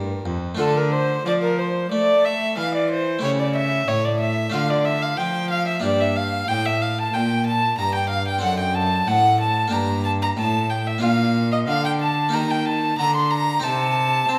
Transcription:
Already playing: G2 A#3 D4 A#4
0.25 F2
0.55 D3 A3 D4 F4 A4
0.59 D3 A4
0.75 A#4
0.91 C5
1.25 F3 D5
1.41 A#4
1.58 C5
1.90 A3 D5
2.24 E5
2.57 E3 F5
2.74 D5
2.90 C5
3.19 C#3 A3 E4 G4
3.23 C#3 C#5
3.39 D5
3.55 E5
3.88 A2 C#5
4.05 D5
4.20 E5
4.50 D3 A3 D4 F4 F5
4.54 D3 F5
4.70 D5
4.85 E5
5.02 F5
5.17 F3 G5
5.50 F5
5.67 E5
5.80 G2 A#3 D4 G4 D5
5.84 G2 D5
6.00 E5
6.16 F5
6.48 A2 G5
6.65 E5
6.82 F5
6.98 A5
7.13 A#2 G5
7.46 A5
7.78 G2 A#5
7.95 G5
8.09 F5
8.28 G5
8.39 C4 D4 A4
8.43 F#2 F#5
8.59 G5
8.74 A5
9.07 A2 F#5
9.40 A5
9.68 A#3 D4 G4
9.72 G2 A#5
10.05 A5
10.21 A#5
10.36 A2 A5
10.70 G5
10.86 E5
10.98 A#3 D4 F4 F5
11.02 A#2 F5
11.52 D#5
11.67 D3 F5
11.84 G5
12.00 A5
12.29 A#3 D#4 G4 A#5
12.33 D#3 A#5
12.50 G5
12.65 A5 A#5
12.71 A5
12.97 D3 A#5
13.14 C6
13.30 A#5
13.60 C4 D#4 G4 A5
13.64 C3 A5
14.29 C4

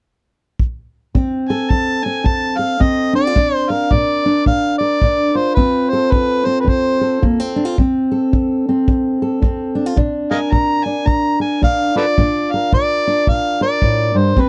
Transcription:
0.59 kick
1.15 F2 C4, kick
1.49 A4 G#5
1.70 F2 A5, kick
2.04 C4 G#5
2.24 F2 A5, kick
2.57 A4 F5
2.80 F2 C4 D#5, kick
3.13 D4 D5
3.27 F4
3.35 A#2 D4, kick
3.55 C5
3.70 A#4 F5
3.91 A#2 D5, kick
4.26 D4
4.46 A#2 F5, kick
4.78 A#4 D5
5.02 A#2 D4, kick
5.35 F4 C5
5.55 F2 C4 B4, kick
5.89 A4 C5
6.12 F2 B4, kick
6.45 C4 C5
6.60 B4
6.64 F2, kick
6.69 C5
7.01 A4
7.22 F2 A#3, kick
7.40 C4
7.56 D4
7.65 F4
7.78 F2 C4, kick
8.11 A4
8.33 F2, kick
8.69 C4
8.88 F2, kick
9.22 A4
9.42 F2 C4, kick
9.75 D4
9.86 F4
9.96 A#2 D4, kick
10.31 A#4 D#5 F5 G#5
10.52 A#2 A#5, kick
10.84 D4 G#5
11.06 A#2 A#5, kick
11.40 A#4 G#5
11.62 A#2 D4 F5, kick
11.96 F4 A4 B4 D5
12.18 A#2 D4, kick
12.52 A#4 F5
12.72 A#2 D5, kick
13.07 D4
13.27 A#2 F5, kick
13.61 A#4 D5
13.82 A2, kick
14.14 G2 C5
14.36 F2 C4, kick
14.40 B4

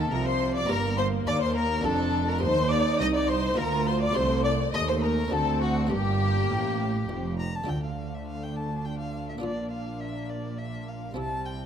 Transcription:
Already playing: D#3 A#3 D4 F4 A4
0.00 A5
0.11 C2 C3 F3 A#4 A#5
0.25 C5 C6
0.55 D5 D6
0.65 G1 G2 A#3 D#4 G4 A#4 A#5
0.70 G2 A#3
0.98 C5 C6
1.26 D#2 D5 D6
1.40 C5 C6
1.55 A#4 A#5
1.81 F1 F2 D4 F4 A4
1.86 F2 A5
2.27 A#4 A#5
2.39 D#2 D#4 G4 C5 C6
2.43 D#2
2.70 D5 D6
2.99 C2 D#5 D#6
3.14 D5 D6
3.28 C5 C6
3.54 D2 A#3 F4 A#4
3.58 D2 A#5
3.86 C5 C6
4.00 D5 D6
4.12 C2 A3 D#4 G4 C5 C6
4.17 C2
4.45 D5 D6
4.73 D#2 A3 D#5 D#6
4.88 C5 C6
5.03 A#4 A#5
5.28 D2 C4 D4 F#4 A4
5.32 D2 A4 A5
5.61 F#4 F#5
5.87 G1 G2 A#3 D4 G4
5.91 G2 A#3 G4 G5
6.49 A1 A2
7.09 F1 F2
7.39 A#5
7.55 A5
7.64 D2 A3 D4 F4
7.68 D3 A3 D4 F4 G5
7.84 F5
8.14 E5
8.28 F5
8.43 G5
8.56 A5
8.85 G5
8.99 F5
9.29 E5
9.38 A#3 D4 F4 D5
9.43 A#1 A#2 A#3
9.71 F5
10.00 E5
10.29 D5
10.59 E5
10.88 F5
11.14 C2 C3 G3 C4 E4 A5
11.45 G5

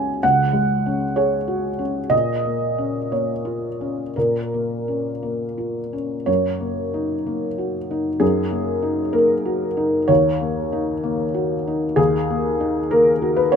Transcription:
Already playing: C#2 G#3 C#4 F#4 G#4 G#5
0.23 C#2 F#5
0.53 G#3
0.86 C#4
1.16 G#4 C#5
1.48 F#4
1.79 C#4
2.10 A#2 D#5
2.45 A#3
2.78 C#4
3.12 A#3 C#5
3.45 F4
3.81 C#4
4.16 A#2 A#4
4.54 A#3
4.88 C#4
5.23 A#3
5.58 F4
5.93 C#4
6.26 F#2 C#5
6.60 A#3
6.94 D#4
7.26 A#3
7.58 F#4
7.91 D#4
8.20 F#2 G#4
8.51 A#3
8.82 D#4
9.13 A#3 A#4
9.45 F#4
9.77 D#4
10.08 D#2 C#5
10.41 A#3
10.72 D#4
11.04 A#3
11.34 F#4
11.67 D#4
11.96 D#2 G#4
12.30 A#3
12.60 D#4
12.91 A#3 A#4
13.22 F#4
13.36 B4
13.52 D#4 C#5

